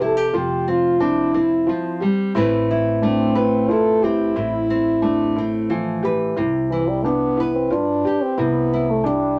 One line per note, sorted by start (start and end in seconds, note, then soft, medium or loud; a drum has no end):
0.00 0.30 C3 medium
0.00 0.30 F3 medium
0.00 0.67 C4 medium
0.00 0.17 E4 medium
0.00 0.33 G4 medium
0.00 2.17 C5 medium
0.05 0.29 A4 medium
0.17 0.34 G4 medium
0.29 0.39 A4 medium
0.34 1.64 F1 medium
0.34 1.68 F3 medium
0.34 1.00 F4 medium
0.34 0.71 G4 medium
0.68 1.00 C4 medium
0.68 1.04 F4 medium
1.00 1.34 C4 medium
1.00 1.34 D4 medium
1.00 2.02 E4 medium
1.34 2.36 C4 medium
1.34 1.67 E4 medium
1.67 2.00 F3 medium
1.67 2.02 F3 medium
2.00 2.35 G3 medium
2.00 2.34 G4 medium
2.35 3.65 A1 loud
2.35 4.35 A2 medium
2.35 3.03 A3 medium
2.35 4.03 C4 medium
2.35 3.01 E4 medium
2.35 2.70 E4 medium
2.35 3.35 B4 medium
2.71 3.70 E4 medium
3.02 4.33 A3 medium
3.02 3.72 C4 medium
3.02 3.35 D4 medium
3.35 3.68 E4 medium
3.35 4.39 B4 medium
3.69 6.38 E4 medium
3.69 4.02 F4 medium
3.69 4.07 A4 loud
4.02 4.69 C4 medium
4.02 6.05 E4 medium
4.02 4.35 G4 medium
4.36 5.66 A1 medium
4.36 6.37 A2 medium
4.36 5.02 E4 medium
4.70 5.37 C4 medium
5.02 6.33 A3 medium
5.02 5.35 D4 medium
5.36 5.71 C4 medium
5.36 5.69 E4 medium
5.70 6.33 E3 medium
5.70 6.03 F3 medium
6.03 6.36 G4 medium
6.03 6.34 B4 medium
6.36 7.67 C2 medium
6.36 7.05 C3 medium
6.36 7.02 E4 medium
6.71 6.90 E3 medium
6.71 8.35 E4 medium
6.88 7.05 G3 medium
7.04 7.54 B3 loud
7.04 7.37 D4 medium
7.04 muted nylon-string guitar stroke medium
7.37 7.70 E4 medium
7.37 8.35 B4 medium
7.55 7.74 C4 medium
7.70 8.02 G2 medium
7.70 8.24 D4 medium
7.70 8.04 F4 medium
7.70 muted nylon-string guitar stroke medium
8.05 8.37 G4 medium
8.05 8.35 G4 medium
8.22 8.40 C4 medium
8.38 9.39 C2 medium
8.38 9.05 C3 medium
8.38 8.92 B3 medium
8.38 9.03 E4 medium
8.74 9.39 E4 medium
8.90 9.09 A3 medium
9.04 9.39 G3 medium
9.04 9.37 D4 medium
9.04 muted nylon-string guitar stroke medium